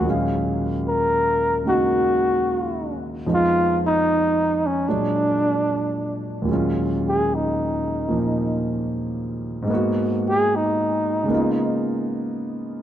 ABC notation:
X:1
M:4/4
L:1/8
Q:"Swing" 1/4=75
K:Ebm
V:1 name="Flugelhorn"
z2 B2 G3 z | F E2 D =D3 z | z A E3 z3 | z A E3 z3 |]
V:2 name="Grand piano" clef=bass
[E,,B,,G,A,Df]4 [D,A,B,EG]4 | [F,,F,A,CE]4 [B,,^F,A,=D^c]4 | [E,,B,,G,A,DF]4 [B,,F,B,E]4 | [A,,A,B,CG]4 [D,A,B,CEF]4 |]